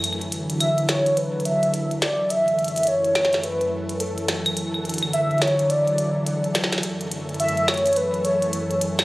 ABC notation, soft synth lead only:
X:1
M:4/4
L:1/16
Q:"Swing 16ths" 1/4=106
K:F#m
V:1 name="Soft synth lead"
z4 e2 c2 B2 e4 d2 | e4 c4 B4 A3 z | z4 e2 c2 d6 z2 | z4 e2 c2 B2 c4 z2 |]